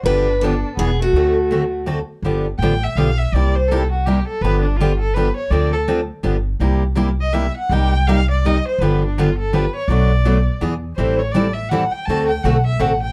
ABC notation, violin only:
X:1
M:3/4
L:1/8
Q:"Swing" 1/4=165
K:G
V:1 name="Violin"
D2 D2 B, A,- | A,4 z2 | z2 g e =f e | d c A F G A |
B D =F A B ^c | d A z4 | z3 _e =e f | g2 =f d _e c |
B D =F A B ^c | d4 z2 | c ^c d e f g | a g f e f g |]